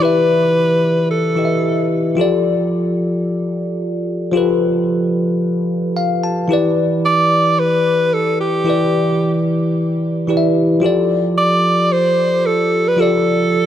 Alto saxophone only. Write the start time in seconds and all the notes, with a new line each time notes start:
0.03 B4
1.11 A4
7.06 D5
7.60 B4
8.14 A4
8.41 G4
11.38 D5
11.92 C5
12.46 A4
12.88 B4
13.00 A4